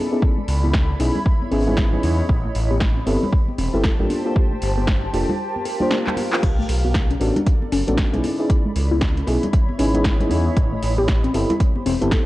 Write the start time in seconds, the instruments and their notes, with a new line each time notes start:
Already playing: synth pluck C#4, ambient pad E4 B5
0.11 fm electric piano B3 C#4 D#4 E4 G#4
0.22 kick
0.38 synth pluck G#3
0.48 analog synth bass C#2, ambient pad C#5, open hi-hat
0.64 synth pluck E4, high conga
0.73 kick, snare
0.90 synth pluck C#4
0.94 ambient pad D#5
0.99 analog synth bass B1, fm electric piano B3 C#4 D#4 E4 G#4, open hi-hat
1.15 synth pluck D#4, low conga
1.26 kick
1.42 high conga
1.51 analog synth bass G#1, fm electric piano B3 C#4 D#4 E4 G#4, synth pluck C#4, open hi-hat
1.67 fm electric piano B3 C#4 D#4 E4 G#4, low conga
1.77 synth pluck G#4, kick, snare
1.92 fm electric piano B3 C#4 D#4 E4 G#4, low conga
2.03 analog synth bass E2, synth pluck C#4, open hi-hat, high conga
2.29 analog synth bass A1, ambient pad G4, kick
2.45 synth pluck A3
2.52 analog synth bass A1, ambient pad C5, open hi-hat
2.71 synth pluck G4, high conga
2.80 kick, snare
2.97 synth pluck C4
3.06 analog synth bass G1, fm electric piano B3 C4 E4 G4 A4, open hi-hat
3.12 ambient pad A5
3.22 synth pluck E4, low conga
3.33 kick
3.48 high conga
3.58 analog synth bass E1, synth pluck C4, open hi-hat
3.73 analog synth bass G1, fm electric piano B3 C4 E4 G4 A4, low conga
3.84 synth pluck A4, kick, snare
3.99 analog synth bass A1, fm electric piano A#3 D4 F4 G4 A4, low conga
4.10 synth pluck D4, open hi-hat, high conga
4.25 fm electric piano A#3 D4 F4 G4 A4
4.36 kick
4.52 synth pluck A3
4.58 analog synth bass G1, ambient pad A#4, open hi-hat
4.78 synth pluck G4, high conga
4.87 kick, snare
5.03 synth pluck D4
5.13 analog synth bass F1, fm electric piano A#3 D4 F4 G4 A4, ambient pad F5, open hi-hat
5.29 synth pluck F4, low conga
5.56 high conga
5.65 synth pluck A4, open hi-hat
5.80 fm electric piano A#3 D4 F4 G4 C5, low conga
5.91 synth pluck D4, snare
6.07 clap, low conga
6.16 synth pluck F4, open hi-hat, high conga
6.33 synth pluck F4, clap
6.43 analog synth bass B1, ambient pad A4, kick, closed hi-hat, crash
6.59 synth pluck A3
6.69 analog synth bass B1, open hi-hat, high bongo
6.84 synth pluck F#4, ambient pad D5, high conga
6.94 kick, snare, closed hi-hat
7.08 synth pluck C#4, ambient pad B5, closed hi-hat
7.20 analog synth bass A1, fm electric piano B3 C#4 D4 F#4 A4, open hi-hat, high bongo
7.36 synth pluck D4, closed hi-hat, low conga
7.46 kick, closed hi-hat
7.62 high conga
7.72 analog synth bass F#1, synth pluck C#4, open hi-hat, high bongo
7.87 analog synth bass A1, fm electric piano B3 C#4 D4 F#4 A4, closed hi-hat, low conga
7.98 synth pluck A4, kick, snare, closed hi-hat
8.13 analog synth bass B1, fm electric piano B3 C#4 D#4 E4 G#4, closed hi-hat, high bongo, low conga
8.24 synth pluck C#4, ambient pad E4, open hi-hat, high conga
8.39 fm electric piano B3 C#4 D#4 E4 G#4
8.50 kick, closed hi-hat
8.65 synth pluck G#3
8.70 ambient pad C#5
8.76 analog synth bass C#2, open hi-hat, high bongo
8.91 synth pluck E4, high conga
9.01 kick, snare, closed hi-hat
9.17 synth pluck C#4, closed hi-hat
9.27 analog synth bass B1, fm electric piano B3 C#4 D#4 E4 G#4, ambient pad D#5, open hi-hat, high bongo
9.43 synth pluck D#4, closed hi-hat, low conga
9.53 kick, closed hi-hat
9.69 high conga
9.79 analog synth bass G#1, fm electric piano B3 C#4 D#4 E4 G#4, synth pluck C#4, open hi-hat
9.94 fm electric piano B3 C#4 D#4 E4 G#4, closed hi-hat, low conga
10.04 synth pluck G#4, kick, snare, closed hi-hat
10.20 fm electric piano B3 C#4 D#4 E4 G#4, closed hi-hat, low conga
10.30 analog synth bass E2, synth pluck C#4, open hi-hat, high bongo, high conga
10.57 analog synth bass A1, ambient pad G4, kick, closed hi-hat
10.72 synth pluck A3
10.83 analog synth bass A1, ambient pad C5, open hi-hat, high bongo
10.98 synth pluck G4, high conga
11.08 kick, snare, closed hi-hat
11.24 synth pluck C4, closed hi-hat
11.34 analog synth bass G1, fm electric piano B3 C4 E4 G4 A4, open hi-hat, high bongo
11.39 ambient pad A5
11.50 synth pluck E4, closed hi-hat, low conga
11.60 kick, closed hi-hat
11.76 high conga
11.86 analog synth bass E1, synth pluck C4, open hi-hat, high bongo
12.01 analog synth bass G1, fm electric piano B3 C4 E4 G4 A4, closed hi-hat, low conga
12.11 synth pluck A4, kick, snare, closed hi-hat